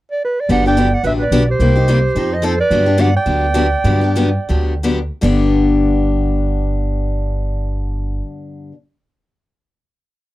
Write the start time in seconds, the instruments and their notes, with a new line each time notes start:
0.12 clarinet D5
0.25 clarinet B4
0.41 clarinet D5
0.49 upright bass G1, steel-string acoustic guitar D3 F#3 B3 D4 G4, clarinet D5 F#5
0.66 steel-string acoustic guitar B3 D4 G4, clarinet D5 G5
0.77 steel-string acoustic guitar D3 F#3 B3 D4 G4
0.94 clarinet D5 F#5
1.03 upright bass A1, steel-string acoustic guitar D3 F#3 B3 D4 G4, clarinet B4 E5
1.19 clarinet B4 D5
1.31 upright bass B1, steel-string acoustic guitar D3 F#3 B3 D4 G4
1.48 clarinet G4 C5
1.59 upright bass C2, steel-string acoustic guitar C3 G3 A#3 D#4 G4
1.76 steel-string acoustic guitar A#3 D#4 G4
1.88 steel-string acoustic guitar C3 G3 A#3 D#4 G4
2.15 upright bass F2, steel-string acoustic guitar F3 C4 D#4 A4
2.32 clarinet C5 D#5
2.42 steel-string acoustic guitar F3 C4 D#4 A4, clarinet A4 C5
2.60 clarinet B4 D5
2.71 upright bass G2, steel-string acoustic guitar D3 F#3 B3 D4 G4
2.86 steel-string acoustic guitar B3 D4 G4
2.98 steel-string acoustic guitar D3 F#3 B3 D4 G4, clarinet D5 F#5
3.16 clarinet D5 G5
3.26 upright bass D2, steel-string acoustic guitar D3 F#3 B3 D4 G4
3.54 steel-string acoustic guitar D3 F#3 B3 D4 G4
3.84 upright bass G2, steel-string acoustic guitar D3 F#3 B3 D4 G4
4.01 steel-string acoustic guitar B3 D4 G4
4.15 steel-string acoustic guitar D3 F#3 B3 D4 G4
4.49 upright bass D2, steel-string acoustic guitar D3 F#3 B3 D4 G4
4.83 steel-string acoustic guitar D3 F#3 B3 D4 G4
5.21 upright bass G1, steel-string acoustic guitar G2 D3 B3 D4 G4